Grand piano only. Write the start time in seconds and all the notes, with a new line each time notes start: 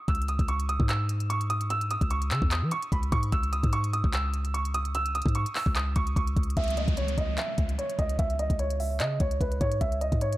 0.08 E6
0.29 D#6
0.49 C#6
0.69 D#6
0.89 E6
1.30 C#6
1.50 D#6
1.70 E6
1.91 D#6
2.11 C#6
2.31 E6
2.52 D#6
2.72 C#6
2.92 B5
3.12 C#6
3.32 E6
3.53 D#6
3.73 C#6
3.93 D#6
4.14 E6
4.54 C#6
4.74 D#6
4.95 E6
5.15 D#6
5.35 C#6
5.56 E6
5.76 D#6
5.96 C#6
6.16 C#6
6.57 E5
6.77 D#5
6.97 C#5
7.18 D#5
7.38 E5
7.79 C#5
7.99 D#5
8.19 E5
8.39 D#5
8.59 C#5
8.80 E5
9.00 D#5
9.20 C#5
9.41 B4
9.61 C#5
9.81 E5
10.01 D#5
10.22 C#5